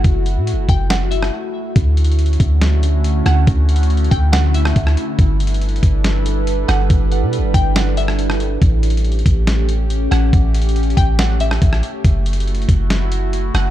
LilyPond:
<<
  \new Staff \with { instrumentName = "Synth pluck" } { \time 4/4 \key d \major \tempo 4 = 140 r4. g''8 fis''8 e''4. | r2. r8 fis''8 | r4. g''8 fis''8 e''4. | r2. r8 fis''8 |
r4. g''8 fis''8 e''4. | r2. r8 fis''8 | r4. g''8 fis''8 e''4. | r2. r8 fis''8 | }
  \new Staff \with { instrumentName = "Ambient pad" } { \time 4/4 \key d \major << { <e' fis'>1 | <d a e' fis'>1~ | <d a e' fis'>1 | <g d' a' b'>1~ |
<g d' a' b'>1 | <cis' g'>1~ | <cis' g'>1 | <e' fis'>1 | } \\ { a1 | cis'1~ | cis'1 | r1 |
r1 | a1~ | a1~ | a1 | } >> }
  \new Staff \with { instrumentName = "808-style bass" } { \clef bass \time 4/4 \key d \major fis,,8. a,16. fis,,16. fis,,4. r4 | d,4. d,2 d,8 | d,4. d,4. d,8 r8 | g,,4. g,,2 g,,8 |
g,,8. b,16. g,,16. g,,2~ g,,8 | a,,4. a,,2 a,,8 | a,,4. a,,4. a,,8 r8 | fis,,4. fis,,2 fis,,8 | }
  \new DrumStaff \with { instrumentName = "Drums" } \drummode { \time 4/4 <hh bd>8 hh8 hh8 <hh bd>8 <hh sn>8 hh16 ss16 r4 | \tuplet 3/2 { <hh bd>16 r16 r16 hh16 hh16 hh16 hh16 hh16 hh16 <hh bd>16 r16 r16 } <hh sn>8 hh8 hh8 <hh ss>8 | \tuplet 3/2 { <hh bd>16 r16 r16 hh16 hh16 hh16 hh16 hh16 hh16 <hh bd>16 r16 r16 } <hh sn>8 hh16 ss16 <hh bd>16 ss16 hh8 | \tuplet 3/2 { <hh bd>16 r16 r16 hh16 hh16 hh16 hh16 hh16 hh16 <hh bd>16 r16 r16 } <hh sn>8 hh8 hh8 <hh ss>8 |
<hh bd>8 hh8 hh8 <hh bd>8 <hh sn>8 hh16 ss16 hh16 ss16 hh8 | \tuplet 3/2 { <hh bd>16 r16 r16 hh16 hh16 hh16 hh16 hh16 hh16 <hh bd>16 r16 r16 } <hh sn>8 hh8 hh8 <hh ss>8 | \tuplet 3/2 { <hh bd>16 r16 r16 hh16 hh16 hh16 hh16 hh16 hh16 <hh bd>16 r16 r16 } <hh sn>8 hh16 ss16 <hh bd>16 ss16 hh8 | \tuplet 3/2 { <hh bd>16 r16 r16 hh16 hh16 hh16 hh16 hh16 hh16 <hh bd>16 r16 r16 } <hh sn>8 hh8 hh8 <hh ss>8 | }
>>